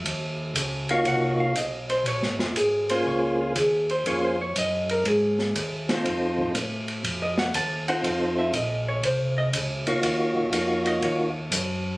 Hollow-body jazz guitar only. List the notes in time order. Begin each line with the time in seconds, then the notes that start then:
0.91 F5
1.07 F#5
1.40 F5
1.58 D#5
1.90 C5
2.08 C#5
2.40 F4
2.57 G#4
2.90 C5
3.07 C#5
3.41 F4
3.57 G#4
3.91 C5
4.08 C#5
4.25 C5
4.41 C#5
4.58 D#5
4.91 A#4
5.08 G#4
7.22 D#5
7.39 F#5
7.55 A5
7.88 F#5
8.05 F5
8.39 E5
8.55 D#5
8.88 C#5
9.05 C5
9.38 D#5
10.87 D#5
11.04 C#5